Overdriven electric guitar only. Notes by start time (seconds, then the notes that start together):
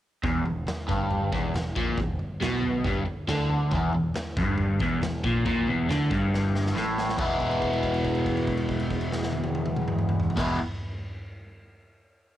0.24 E2
0.46 E2
0.68 muted overdriven electric guitar stroke
0.88 G2
1.33 E2
1.56 E2
1.77 A#2
2.00 E2
2.41 B2
2.86 G2
3.06 muted overdriven electric guitar stroke
3.29 D3
3.72 E2
3.95 E2
4.16 muted overdriven electric guitar stroke
4.38 G2
4.81 E2
5.02 E2
5.24 A#2
5.45 A#2
5.67 E2
5.89 D3
6.10 G2
6.75 A2
7.17 E2 B2 E3 G#3 B3
7.22 E4
10.36 E2 B2 E3 G#3 B3 E4